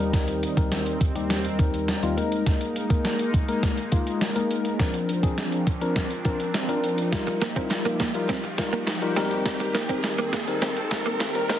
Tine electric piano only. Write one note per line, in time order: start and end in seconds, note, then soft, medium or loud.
0.00 0.43 D#2 medium
0.00 0.43 G3 medium
0.00 0.43 C4 medium
0.00 0.43 D#4 medium
0.00 0.43 A#4 loud
0.57 0.97 D#2 medium
0.57 0.97 G3 medium
0.57 0.97 C4 medium
0.57 0.97 D#4 medium
0.57 0.97 A#4 medium
1.15 1.45 D#2 medium
1.15 1.45 G3 medium
1.15 1.45 C4 medium
1.15 1.45 D#4 medium
1.15 1.45 G4 medium
1.59 1.89 D#2 medium
1.59 1.89 G3 medium
1.59 1.89 C4 medium
1.59 1.89 D#4 medium
1.59 1.89 A#4 medium
2.02 2.17 D#2 medium
2.02 2.17 G3 medium
2.02 2.17 C4 medium
2.02 2.16 D#4 medium
2.02 2.17 F4 medium
2.17 2.75 G#3 medium
2.17 2.76 A#3 medium
2.17 2.76 D#4 medium
2.17 2.76 A#4 medium
2.90 3.30 G#3 medium
2.90 3.30 A#3 medium
2.90 3.30 D#4 medium
2.90 3.30 A#4 medium
3.48 3.78 G#3 medium
3.48 3.78 A#3 medium
3.48 3.78 D#4 medium
3.48 3.78 A#4 medium
3.92 4.22 G#3 medium
3.92 4.22 A#3 medium
3.92 4.22 D#4 medium
3.92 4.22 F4 medium
4.35 4.65 G#3 medium
4.35 4.66 A#3 medium
4.35 4.66 D#4 medium
4.35 4.66 A#4 medium
4.79 5.09 F3 medium
4.79 5.09 C4 medium
4.79 5.09 D4 medium
4.79 5.09 A#4 medium
5.23 5.63 F3 medium
5.23 5.63 C4 medium
5.23 5.63 D4 medium
5.23 5.63 G#4 medium
5.81 6.11 F3 medium
5.81 6.11 C4 medium
5.81 6.11 D4 medium
5.81 6.11 A#4 loud
6.25 6.55 F3 medium
6.25 6.55 C4 medium
6.25 6.55 D4 medium
6.25 6.55 A#4 medium
6.68 6.99 F3 medium
6.68 6.99 C4 medium
6.68 6.99 D4 medium
6.68 6.99 A#4 medium
7.12 7.42 G3 medium
7.12 7.42 D#4 medium
7.12 7.42 F4 medium
7.12 7.42 A#4 medium
7.56 7.96 G3 medium
7.56 7.96 D#4 medium
7.56 7.96 F4 medium
7.56 7.96 A#4 loud
8.14 8.44 G3 medium
8.14 8.44 D#4 medium
8.14 8.44 F4 medium
8.14 8.44 A#4 medium
8.58 8.88 G3 medium
8.58 8.88 D#4 medium
8.58 8.88 F4 medium
8.58 8.88 A#4 medium
9.02 9.15 G3 medium
9.02 9.16 D#4 medium
9.02 9.17 F4 medium
9.02 9.16 A#4 loud
9.16 9.75 D#2 medium
9.16 9.75 G3 medium
9.16 9.75 C4 medium
9.16 9.75 D#4 medium
9.16 9.75 A#4 loud
9.89 10.29 D#2 medium
9.89 10.29 G3 medium
9.89 10.29 C4 medium
9.89 10.29 D#4 medium
9.89 10.29 A#4 medium
10.47 10.77 D#2 medium
10.47 10.77 G3 medium
10.47 10.77 C4 medium
10.47 10.77 D#4 medium
10.47 10.78 A#4 loud
10.91 11.21 D#2 medium
10.91 11.21 G3 medium
10.91 11.21 C4 medium
10.91 11.21 D#4 medium
10.91 11.21 A#4 medium
11.35 11.49 D#2 medium
11.35 11.49 G3 medium
11.35 11.49 C4 medium
11.35 11.48 D#4 medium
11.35 11.48 A#4 medium
11.49 11.59 G#3 loud
11.49 11.59 A#3 medium
11.49 11.59 D#4 medium
11.49 11.59 A#4 loud